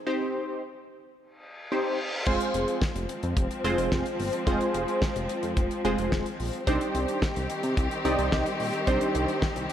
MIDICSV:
0, 0, Header, 1, 6, 480
1, 0, Start_track
1, 0, Tempo, 550459
1, 57, Time_signature, 4, 2, 24, 8
1, 8483, End_track
2, 0, Start_track
2, 0, Title_t, "Analog polysynth"
2, 0, Program_c, 0, 90
2, 57, Note_on_c, 0, 60, 85
2, 57, Note_on_c, 0, 63, 81
2, 57, Note_on_c, 0, 67, 83
2, 57, Note_on_c, 0, 72, 96
2, 539, Note_off_c, 0, 60, 0
2, 539, Note_off_c, 0, 63, 0
2, 539, Note_off_c, 0, 67, 0
2, 539, Note_off_c, 0, 72, 0
2, 1497, Note_on_c, 0, 60, 83
2, 1498, Note_on_c, 0, 63, 77
2, 1498, Note_on_c, 0, 67, 78
2, 1498, Note_on_c, 0, 72, 92
2, 1738, Note_off_c, 0, 60, 0
2, 1738, Note_off_c, 0, 63, 0
2, 1738, Note_off_c, 0, 72, 0
2, 1739, Note_off_c, 0, 67, 0
2, 1977, Note_on_c, 0, 56, 88
2, 1977, Note_on_c, 0, 65, 85
2, 1978, Note_on_c, 0, 60, 85
2, 1978, Note_on_c, 0, 68, 86
2, 1978, Note_on_c, 0, 72, 100
2, 2459, Note_off_c, 0, 56, 0
2, 2459, Note_off_c, 0, 60, 0
2, 2459, Note_off_c, 0, 65, 0
2, 2459, Note_off_c, 0, 72, 0
2, 2460, Note_off_c, 0, 68, 0
2, 3177, Note_on_c, 0, 56, 89
2, 3177, Note_on_c, 0, 60, 81
2, 3177, Note_on_c, 0, 65, 83
2, 3177, Note_on_c, 0, 68, 83
2, 3177, Note_on_c, 0, 72, 96
2, 3539, Note_off_c, 0, 56, 0
2, 3539, Note_off_c, 0, 60, 0
2, 3539, Note_off_c, 0, 65, 0
2, 3539, Note_off_c, 0, 68, 0
2, 3539, Note_off_c, 0, 72, 0
2, 3897, Note_on_c, 0, 60, 84
2, 3898, Note_on_c, 0, 56, 93
2, 3898, Note_on_c, 0, 65, 84
2, 3898, Note_on_c, 0, 68, 82
2, 3898, Note_on_c, 0, 72, 102
2, 4379, Note_off_c, 0, 56, 0
2, 4379, Note_off_c, 0, 60, 0
2, 4380, Note_off_c, 0, 65, 0
2, 4380, Note_off_c, 0, 68, 0
2, 4380, Note_off_c, 0, 72, 0
2, 5099, Note_on_c, 0, 56, 92
2, 5099, Note_on_c, 0, 60, 81
2, 5099, Note_on_c, 0, 65, 83
2, 5099, Note_on_c, 0, 68, 81
2, 5099, Note_on_c, 0, 72, 98
2, 5459, Note_off_c, 0, 65, 0
2, 5460, Note_off_c, 0, 56, 0
2, 5460, Note_off_c, 0, 60, 0
2, 5460, Note_off_c, 0, 68, 0
2, 5460, Note_off_c, 0, 72, 0
2, 5818, Note_on_c, 0, 60, 92
2, 5818, Note_on_c, 0, 62, 82
2, 5818, Note_on_c, 0, 67, 82
2, 5818, Note_on_c, 0, 72, 100
2, 5819, Note_on_c, 0, 63, 86
2, 6300, Note_off_c, 0, 60, 0
2, 6300, Note_off_c, 0, 62, 0
2, 6300, Note_off_c, 0, 63, 0
2, 6300, Note_off_c, 0, 67, 0
2, 6300, Note_off_c, 0, 72, 0
2, 7019, Note_on_c, 0, 60, 91
2, 7019, Note_on_c, 0, 63, 83
2, 7019, Note_on_c, 0, 67, 83
2, 7019, Note_on_c, 0, 74, 81
2, 7019, Note_on_c, 0, 75, 97
2, 7379, Note_off_c, 0, 67, 0
2, 7380, Note_off_c, 0, 60, 0
2, 7380, Note_off_c, 0, 63, 0
2, 7380, Note_off_c, 0, 74, 0
2, 7380, Note_off_c, 0, 75, 0
2, 7738, Note_on_c, 0, 60, 95
2, 7738, Note_on_c, 0, 62, 84
2, 7738, Note_on_c, 0, 63, 85
2, 7738, Note_on_c, 0, 67, 83
2, 7738, Note_on_c, 0, 72, 102
2, 8220, Note_off_c, 0, 60, 0
2, 8220, Note_off_c, 0, 62, 0
2, 8220, Note_off_c, 0, 63, 0
2, 8220, Note_off_c, 0, 67, 0
2, 8220, Note_off_c, 0, 72, 0
2, 8483, End_track
3, 0, Start_track
3, 0, Title_t, "String section"
3, 0, Program_c, 1, 48
3, 1977, Note_on_c, 1, 53, 84
3, 1977, Note_on_c, 1, 56, 75
3, 1977, Note_on_c, 1, 60, 88
3, 5782, Note_off_c, 1, 53, 0
3, 5782, Note_off_c, 1, 56, 0
3, 5782, Note_off_c, 1, 60, 0
3, 5817, Note_on_c, 1, 51, 82
3, 5817, Note_on_c, 1, 55, 77
3, 5817, Note_on_c, 1, 60, 75
3, 5817, Note_on_c, 1, 67, 91
3, 8483, Note_off_c, 1, 51, 0
3, 8483, Note_off_c, 1, 55, 0
3, 8483, Note_off_c, 1, 60, 0
3, 8483, Note_off_c, 1, 67, 0
3, 8483, End_track
4, 0, Start_track
4, 0, Title_t, "Analog synth bass"
4, 0, Program_c, 2, 38
4, 1976, Note_on_c, 2, 29, 105
4, 2074, Note_off_c, 2, 29, 0
4, 2217, Note_on_c, 2, 29, 99
4, 2315, Note_off_c, 2, 29, 0
4, 2578, Note_on_c, 2, 29, 104
4, 2675, Note_off_c, 2, 29, 0
4, 2816, Note_on_c, 2, 41, 99
4, 2914, Note_off_c, 2, 41, 0
4, 2936, Note_on_c, 2, 29, 106
4, 3034, Note_off_c, 2, 29, 0
4, 3176, Note_on_c, 2, 29, 103
4, 3274, Note_off_c, 2, 29, 0
4, 3296, Note_on_c, 2, 29, 98
4, 3394, Note_off_c, 2, 29, 0
4, 3417, Note_on_c, 2, 29, 105
4, 3515, Note_off_c, 2, 29, 0
4, 3655, Note_on_c, 2, 31, 99
4, 3754, Note_off_c, 2, 31, 0
4, 3897, Note_on_c, 2, 29, 104
4, 3995, Note_off_c, 2, 29, 0
4, 4135, Note_on_c, 2, 29, 111
4, 4234, Note_off_c, 2, 29, 0
4, 4497, Note_on_c, 2, 29, 103
4, 4595, Note_off_c, 2, 29, 0
4, 4737, Note_on_c, 2, 41, 94
4, 4835, Note_off_c, 2, 41, 0
4, 4856, Note_on_c, 2, 29, 108
4, 4954, Note_off_c, 2, 29, 0
4, 5097, Note_on_c, 2, 29, 109
4, 5195, Note_off_c, 2, 29, 0
4, 5218, Note_on_c, 2, 29, 106
4, 5315, Note_off_c, 2, 29, 0
4, 5337, Note_on_c, 2, 29, 105
4, 5435, Note_off_c, 2, 29, 0
4, 5576, Note_on_c, 2, 34, 93
4, 5674, Note_off_c, 2, 34, 0
4, 5818, Note_on_c, 2, 36, 118
4, 5915, Note_off_c, 2, 36, 0
4, 6058, Note_on_c, 2, 36, 108
4, 6155, Note_off_c, 2, 36, 0
4, 6418, Note_on_c, 2, 36, 94
4, 6515, Note_off_c, 2, 36, 0
4, 6657, Note_on_c, 2, 48, 100
4, 6755, Note_off_c, 2, 48, 0
4, 6777, Note_on_c, 2, 36, 101
4, 6875, Note_off_c, 2, 36, 0
4, 7018, Note_on_c, 2, 36, 101
4, 7115, Note_off_c, 2, 36, 0
4, 7138, Note_on_c, 2, 36, 107
4, 7235, Note_off_c, 2, 36, 0
4, 7257, Note_on_c, 2, 36, 112
4, 7355, Note_off_c, 2, 36, 0
4, 7499, Note_on_c, 2, 34, 99
4, 7596, Note_off_c, 2, 34, 0
4, 7736, Note_on_c, 2, 36, 106
4, 7834, Note_off_c, 2, 36, 0
4, 7978, Note_on_c, 2, 36, 115
4, 8076, Note_off_c, 2, 36, 0
4, 8338, Note_on_c, 2, 36, 99
4, 8435, Note_off_c, 2, 36, 0
4, 8483, End_track
5, 0, Start_track
5, 0, Title_t, "Reverse cymbal"
5, 0, Program_c, 3, 119
5, 1017, Note_on_c, 3, 60, 78
5, 1977, Note_off_c, 3, 60, 0
5, 8483, End_track
6, 0, Start_track
6, 0, Title_t, "Drums"
6, 1975, Note_on_c, 9, 49, 101
6, 1976, Note_on_c, 9, 36, 114
6, 2063, Note_off_c, 9, 36, 0
6, 2063, Note_off_c, 9, 49, 0
6, 2096, Note_on_c, 9, 42, 58
6, 2183, Note_off_c, 9, 42, 0
6, 2217, Note_on_c, 9, 42, 83
6, 2304, Note_off_c, 9, 42, 0
6, 2336, Note_on_c, 9, 42, 49
6, 2423, Note_off_c, 9, 42, 0
6, 2455, Note_on_c, 9, 36, 113
6, 2457, Note_on_c, 9, 38, 110
6, 2542, Note_off_c, 9, 36, 0
6, 2545, Note_off_c, 9, 38, 0
6, 2578, Note_on_c, 9, 42, 65
6, 2665, Note_off_c, 9, 42, 0
6, 2696, Note_on_c, 9, 42, 85
6, 2783, Note_off_c, 9, 42, 0
6, 2815, Note_on_c, 9, 42, 55
6, 2902, Note_off_c, 9, 42, 0
6, 2936, Note_on_c, 9, 36, 121
6, 2936, Note_on_c, 9, 42, 69
6, 3023, Note_off_c, 9, 36, 0
6, 3023, Note_off_c, 9, 42, 0
6, 3058, Note_on_c, 9, 42, 50
6, 3146, Note_off_c, 9, 42, 0
6, 3179, Note_on_c, 9, 42, 74
6, 3266, Note_off_c, 9, 42, 0
6, 3298, Note_on_c, 9, 42, 54
6, 3385, Note_off_c, 9, 42, 0
6, 3417, Note_on_c, 9, 36, 107
6, 3417, Note_on_c, 9, 38, 114
6, 3504, Note_off_c, 9, 36, 0
6, 3504, Note_off_c, 9, 38, 0
6, 3538, Note_on_c, 9, 42, 55
6, 3625, Note_off_c, 9, 42, 0
6, 3658, Note_on_c, 9, 46, 89
6, 3745, Note_off_c, 9, 46, 0
6, 3775, Note_on_c, 9, 42, 51
6, 3862, Note_off_c, 9, 42, 0
6, 3896, Note_on_c, 9, 36, 119
6, 3897, Note_on_c, 9, 42, 80
6, 3984, Note_off_c, 9, 36, 0
6, 3984, Note_off_c, 9, 42, 0
6, 4017, Note_on_c, 9, 42, 56
6, 4104, Note_off_c, 9, 42, 0
6, 4137, Note_on_c, 9, 42, 84
6, 4224, Note_off_c, 9, 42, 0
6, 4256, Note_on_c, 9, 42, 48
6, 4344, Note_off_c, 9, 42, 0
6, 4375, Note_on_c, 9, 36, 118
6, 4378, Note_on_c, 9, 38, 115
6, 4463, Note_off_c, 9, 36, 0
6, 4465, Note_off_c, 9, 38, 0
6, 4498, Note_on_c, 9, 42, 63
6, 4586, Note_off_c, 9, 42, 0
6, 4616, Note_on_c, 9, 42, 86
6, 4703, Note_off_c, 9, 42, 0
6, 4733, Note_on_c, 9, 42, 58
6, 4821, Note_off_c, 9, 42, 0
6, 4855, Note_on_c, 9, 42, 72
6, 4856, Note_on_c, 9, 36, 116
6, 4942, Note_off_c, 9, 42, 0
6, 4943, Note_off_c, 9, 36, 0
6, 4978, Note_on_c, 9, 42, 50
6, 5065, Note_off_c, 9, 42, 0
6, 5099, Note_on_c, 9, 42, 72
6, 5186, Note_off_c, 9, 42, 0
6, 5218, Note_on_c, 9, 42, 53
6, 5305, Note_off_c, 9, 42, 0
6, 5338, Note_on_c, 9, 36, 106
6, 5338, Note_on_c, 9, 38, 115
6, 5425, Note_off_c, 9, 36, 0
6, 5425, Note_off_c, 9, 38, 0
6, 5458, Note_on_c, 9, 42, 54
6, 5545, Note_off_c, 9, 42, 0
6, 5579, Note_on_c, 9, 46, 88
6, 5666, Note_off_c, 9, 46, 0
6, 5697, Note_on_c, 9, 42, 51
6, 5784, Note_off_c, 9, 42, 0
6, 5818, Note_on_c, 9, 36, 120
6, 5819, Note_on_c, 9, 42, 81
6, 5905, Note_off_c, 9, 36, 0
6, 5906, Note_off_c, 9, 42, 0
6, 5938, Note_on_c, 9, 42, 57
6, 6025, Note_off_c, 9, 42, 0
6, 6058, Note_on_c, 9, 42, 83
6, 6146, Note_off_c, 9, 42, 0
6, 6177, Note_on_c, 9, 42, 51
6, 6264, Note_off_c, 9, 42, 0
6, 6296, Note_on_c, 9, 36, 115
6, 6299, Note_on_c, 9, 38, 116
6, 6384, Note_off_c, 9, 36, 0
6, 6386, Note_off_c, 9, 38, 0
6, 6420, Note_on_c, 9, 42, 63
6, 6507, Note_off_c, 9, 42, 0
6, 6537, Note_on_c, 9, 42, 85
6, 6624, Note_off_c, 9, 42, 0
6, 6656, Note_on_c, 9, 42, 58
6, 6743, Note_off_c, 9, 42, 0
6, 6777, Note_on_c, 9, 36, 116
6, 6778, Note_on_c, 9, 42, 73
6, 6865, Note_off_c, 9, 36, 0
6, 6865, Note_off_c, 9, 42, 0
6, 6899, Note_on_c, 9, 42, 50
6, 6986, Note_off_c, 9, 42, 0
6, 7020, Note_on_c, 9, 42, 74
6, 7108, Note_off_c, 9, 42, 0
6, 7138, Note_on_c, 9, 42, 53
6, 7226, Note_off_c, 9, 42, 0
6, 7257, Note_on_c, 9, 38, 110
6, 7258, Note_on_c, 9, 36, 109
6, 7345, Note_off_c, 9, 36, 0
6, 7345, Note_off_c, 9, 38, 0
6, 7378, Note_on_c, 9, 42, 54
6, 7465, Note_off_c, 9, 42, 0
6, 7498, Note_on_c, 9, 46, 84
6, 7585, Note_off_c, 9, 46, 0
6, 7615, Note_on_c, 9, 42, 50
6, 7703, Note_off_c, 9, 42, 0
6, 7737, Note_on_c, 9, 36, 115
6, 7737, Note_on_c, 9, 42, 81
6, 7824, Note_off_c, 9, 36, 0
6, 7824, Note_off_c, 9, 42, 0
6, 7857, Note_on_c, 9, 42, 57
6, 7944, Note_off_c, 9, 42, 0
6, 7977, Note_on_c, 9, 42, 82
6, 8065, Note_off_c, 9, 42, 0
6, 8096, Note_on_c, 9, 42, 51
6, 8183, Note_off_c, 9, 42, 0
6, 8215, Note_on_c, 9, 36, 117
6, 8217, Note_on_c, 9, 38, 111
6, 8303, Note_off_c, 9, 36, 0
6, 8304, Note_off_c, 9, 38, 0
6, 8337, Note_on_c, 9, 42, 63
6, 8424, Note_off_c, 9, 42, 0
6, 8455, Note_on_c, 9, 42, 84
6, 8483, Note_off_c, 9, 42, 0
6, 8483, End_track
0, 0, End_of_file